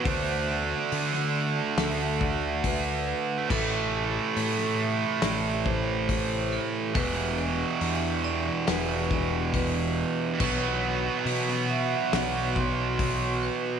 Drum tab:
CC |----------------|x---------------|----------------|x---------------|
HH |o---o---o---o---|----o---o---o---|o---o---o---o---|----o---o---o---|
SD |-----o--o-------|-----o--o-------|--------o-------|-----o--o-------|
BD |o---------o-o---|o---------o-o---|o---------o-o---|o---------o-o---|